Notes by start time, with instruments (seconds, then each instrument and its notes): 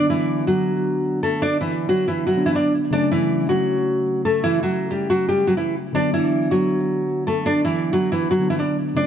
Already playing: tine electric piano D3 F#3 B3 D4
0.10 nylon-string guitar E3 E4
0.47 nylon-string guitar F#3 F#4
1.23 nylon-string guitar A3 A4
1.42 nylon-string guitar D4 D5
1.61 nylon-string guitar E3 E4
1.89 nylon-string guitar F#3 F#4
2.08 nylon-string guitar E3 E4
2.27 nylon-string guitar F#3 F#4
2.35 tine electric piano D3 F#3 B3 D4
2.46 nylon-string guitar E3 E4
2.55 nylon-string guitar D4 D5
2.91 tine electric piano C#3 F#3 A3, nylon-string guitar D4 D5
2.95 tine electric piano C#4
3.12 nylon-string guitar E3 E4
3.49 nylon-string guitar F#3 F#4
4.25 nylon-string guitar A3 A4
4.44 nylon-string guitar E3 E4
4.63 nylon-string guitar F#3 F#4
4.91 nylon-string guitar G3 G4
5.10 nylon-string guitar F#3 F#4
5.29 nylon-string guitar G3 G4
5.47 nylon-string guitar F#3 F#4
5.57 nylon-string guitar E3 E4
5.93 tine electric piano D3 F#3 B3, nylon-string guitar D4 D5
5.97 tine electric piano D4
6.14 nylon-string guitar E3 E4
6.51 nylon-string guitar F#3 F#4
7.27 nylon-string guitar A3 A4
7.46 nylon-string guitar D4 D5
7.65 nylon-string guitar E3 E4
7.93 nylon-string guitar F#3 F#4
8.12 nylon-string guitar E3 E4
8.31 nylon-string guitar F#3 F#4
8.39 tine electric piano D3 F#3 B3 D4
8.50 nylon-string guitar E3 E4
8.59 nylon-string guitar D4 D5
8.95 tine electric piano C#3 F#3 A3, nylon-string guitar D4 D5
8.99 tine electric piano C#4